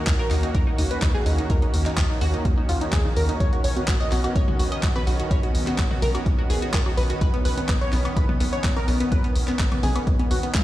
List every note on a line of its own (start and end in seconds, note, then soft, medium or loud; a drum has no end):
0.00 10.64 D#3 medium
0.00 3.36 A#3 medium
0.00 10.64 C#4 medium
0.00 3.36 F#4 medium
0.07 0.15 D#2 medium
0.07 0.16 D#4 medium
0.07 kick loud
0.07 clap loud
0.07 closed hi-hat medium
0.19 0.28 A#4 medium
0.31 0.47 D#2 medium
0.31 0.40 D#4 medium
0.31 clap soft
0.31 open hi-hat loud
0.43 0.52 D#4 medium
0.43 closed hi-hat soft
0.55 0.63 D#2 medium
0.55 0.64 A#4 loud
0.55 kick loud
0.55 closed hi-hat medium
0.67 0.76 D#4 medium
0.78 0.86 D#2 medium
0.78 0.88 D#4 medium
0.78 open hi-hat loud
0.91 0.99 B4 medium
0.91 closed hi-hat medium
1.02 1.18 D#2 loud
1.02 1.12 D#4 medium
1.02 kick loud
1.02 clap loud
1.02 closed hi-hat medium
1.15 1.23 G#4 medium
1.26 1.42 D#2 medium
1.26 1.35 D#4 medium
1.26 open hi-hat medium
1.38 1.47 D#4 medium
1.38 closed hi-hat medium
1.50 1.66 D#2 loud
1.50 1.59 A#4 medium
1.50 kick loud
1.50 closed hi-hat medium
1.62 1.71 D#4 medium
1.62 closed hi-hat soft
1.74 1.89 D#2 medium
1.74 open hi-hat loud
1.86 1.95 D#4 medium
1.86 clap soft
1.86 closed hi-hat medium
1.97 2.05 D#2 medium
1.97 2.07 D#4 medium
1.97 kick loud
1.97 clap loud
1.97 closed hi-hat medium
2.10 2.18 D#4 medium
2.21 2.37 D#2 medium
2.21 2.31 F#4 medium
2.21 open hi-hat loud
2.34 2.42 D#4 medium
2.34 closed hi-hat medium
2.45 2.53 D#2 medium
2.45 kick loud
2.45 closed hi-hat medium
2.58 2.66 D#4 medium
2.69 2.77 D#2 medium
2.69 2.78 F4 medium
2.69 open hi-hat loud
2.81 2.90 D#4 medium
2.81 closed hi-hat medium
2.93 3.08 D#2 loud
2.93 3.02 G#4 medium
2.93 kick loud
2.93 clap loud
2.93 closed hi-hat medium
3.05 3.14 D#4 medium
3.17 3.32 D#2 medium
3.17 3.26 A#4 medium
3.17 open hi-hat loud
3.29 3.37 D#4 medium
3.29 closed hi-hat medium
3.40 3.56 B1 loud
3.40 10.64 B3 medium
3.40 3.50 C#5 loud
3.40 10.64 D#5 medium
3.40 kick loud
3.40 closed hi-hat medium
3.53 3.61 F#4 medium
3.53 closed hi-hat soft
3.64 3.80 B1 medium
3.64 3.73 C#5 medium
3.64 open hi-hat loud
3.77 3.85 F#4 medium
3.77 closed hi-hat medium
3.77 high conga medium
3.88 3.96 B1 medium
3.88 3.97 F#4 medium
3.88 kick loud
3.88 clap loud
3.88 closed hi-hat medium
4.00 4.09 D#5 loud
4.12 4.27 B1 medium
4.12 4.21 F#4 medium
4.12 clap soft
4.12 open hi-hat loud
4.12 high conga medium
4.24 4.33 F#4 medium
4.24 closed hi-hat medium
4.24 high woodblock medium
4.36 4.44 B1 medium
4.36 4.45 C#5 loud
4.36 kick loud
4.36 closed hi-hat medium
4.48 4.56 F#4 medium
4.48 mid tom loud
4.59 4.67 B1 medium
4.59 4.69 F#4 medium
4.59 open hi-hat loud
4.72 4.80 D#5 medium
4.72 closed hi-hat medium
4.83 4.99 B1 loud
4.83 4.92 F#4 medium
4.83 kick loud
4.83 clap loud
4.83 closed hi-hat medium
4.96 5.04 B4 loud
4.96 high conga medium
4.96 high woodblock medium
5.07 5.23 B1 medium
5.07 5.16 F#4 medium
5.07 open hi-hat medium
5.19 5.28 F#4 medium
5.19 closed hi-hat medium
5.31 5.47 B1 loud
5.31 5.40 C#5 medium
5.31 kick loud
5.31 closed hi-hat medium
5.43 5.52 F#4 medium
5.43 closed hi-hat soft
5.55 5.70 B1 medium
5.55 open hi-hat loud
5.67 5.76 F#4 medium
5.67 clap soft
5.67 closed hi-hat medium
5.67 high conga medium
5.78 5.86 B1 medium
5.78 5.88 F#4 medium
5.78 kick loud
5.78 clap loud
5.78 closed hi-hat medium
5.91 5.99 F#4 medium
5.91 mid tom medium
6.02 6.18 B1 medium
6.02 6.12 A#4 medium
6.02 open hi-hat medium
6.02 mid tom medium
6.15 6.23 F#4 medium
6.15 closed hi-hat medium
6.15 high woodblock medium
6.26 6.34 B1 medium
6.26 kick loud
6.26 closed hi-hat medium
6.39 6.47 F#4 medium
6.50 6.58 B1 medium
6.50 6.59 G#4 medium
6.50 open hi-hat loud
6.62 6.71 F#4 medium
6.62 closed hi-hat medium
6.74 6.89 B1 loud
6.74 6.83 A#4 loud
6.74 kick loud
6.74 clap loud
6.74 closed hi-hat medium
6.86 6.95 F#4 medium
6.86 high woodblock medium
6.97 7.13 B1 medium
6.97 7.07 B4 medium
6.97 open hi-hat medium
7.10 7.18 F#4 medium
7.10 closed hi-hat medium
7.21 7.37 B1 loud
7.21 7.31 B4 loud
7.21 kick loud
7.21 closed hi-hat medium
7.34 7.42 B3 medium
7.34 closed hi-hat soft
7.45 7.61 B1 medium
7.45 7.54 B4 medium
7.45 open hi-hat loud
7.58 7.66 B3 medium
7.58 closed hi-hat medium
7.58 high conga medium
7.69 7.77 B1 medium
7.69 7.78 B3 medium
7.69 kick loud
7.69 clap loud
7.69 closed hi-hat medium
7.81 7.90 C#5 medium
7.93 8.08 B1 medium
7.93 8.02 B3 medium
7.93 clap soft
7.93 open hi-hat medium
7.93 high conga medium
8.05 8.14 B3 medium
8.05 closed hi-hat medium
8.05 high woodblock medium
8.16 8.25 B1 medium
8.16 8.26 B4 loud
8.16 kick loud
8.16 closed hi-hat medium
8.29 8.37 B3 medium
8.29 mid tom medium
8.40 8.48 B1 medium
8.40 8.50 B3 medium
8.40 open hi-hat loud
8.53 8.61 C#5 medium
8.53 closed hi-hat medium
8.64 8.80 B1 loud
8.64 8.73 B3 medium
8.64 kick loud
8.64 clap loud
8.64 closed hi-hat medium
8.77 8.85 A#4 loud
8.77 high conga medium
8.77 high woodblock medium
8.88 9.04 B1 medium
8.88 8.97 B3 medium
8.88 open hi-hat medium
9.00 9.09 B3 medium
9.00 closed hi-hat medium
9.12 9.27 B1 loud
9.12 9.21 B4 medium
9.12 kick loud
9.12 closed hi-hat medium
9.24 9.33 B3 medium
9.24 closed hi-hat soft
9.36 9.51 B1 medium
9.36 open hi-hat loud
9.48 9.57 B3 medium
9.48 clap soft
9.48 closed hi-hat medium
9.48 high conga medium
9.59 9.67 B1 medium
9.59 9.69 B3 medium
9.59 kick loud
9.59 clap loud
9.59 closed hi-hat medium
9.72 9.80 B3 medium
9.72 closed hi-hat soft
9.72 mid tom medium
9.72 high woodblock medium
9.83 9.99 B1 medium
9.83 9.92 G#4 medium
9.83 open hi-hat medium
9.83 mid tom medium
9.83 high conga medium
9.96 10.04 B3 medium
9.96 closed hi-hat medium
9.96 high woodblock medium
10.07 10.15 B1 medium
10.07 kick loud
10.07 closed hi-hat medium
10.19 10.28 B3 medium
10.19 closed hi-hat soft
10.19 high conga medium
10.31 10.39 B1 medium
10.31 10.40 F#4 medium
10.31 open hi-hat loud
10.43 10.52 B3 medium
10.43 closed hi-hat medium
10.55 10.64 B1 loud
10.55 10.64 F4 loud
10.55 kick loud
10.55 clap loud
10.55 closed hi-hat medium
10.55 high tom medium